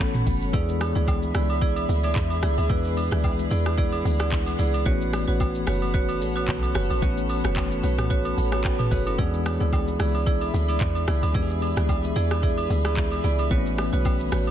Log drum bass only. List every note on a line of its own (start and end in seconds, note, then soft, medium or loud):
0.00 0.24 A1 loud
0.27 0.52 F#1 loud
0.54 0.93 E2 loud
0.96 1.33 D2 loud
1.35 1.86 C#2 medium
1.89 2.14 D2 loud
2.16 2.42 E2 loud
2.43 2.57 C#2 medium
2.58 2.69 D2 medium
2.70 3.10 E2 loud
3.12 3.49 D2 loud
3.51 4.02 E2 loud
4.05 4.56 D2 loud
4.59 4.85 C#2 medium
4.86 5.26 A1 loud
5.28 5.65 A1 medium
5.67 6.23 F#1 medium
6.21 6.47 A1 loud
6.48 6.74 B1 loud
6.75 6.89 F#1 loud
6.90 7.02 A1 medium
7.02 7.42 A1 loud
7.44 7.81 F#1 loud
7.83 8.35 B1 loud
8.38 8.89 A1 loud
8.92 9.17 F#1 medium
9.19 9.58 E2 loud
9.61 9.98 D2 loud
10.00 10.51 C#2 medium
10.54 10.79 D2 loud
10.81 11.06 E2 loud
11.08 11.22 C#2 medium
11.23 11.34 D2 medium
11.35 11.74 E2 loud
11.77 12.14 D2 medium
12.16 12.67 E2 loud
12.70 13.21 D2 loud
13.24 13.50 C#2 loud
13.51 13.91 A1 loud
13.93 14.30 B1 loud
14.32 14.51 A1 medium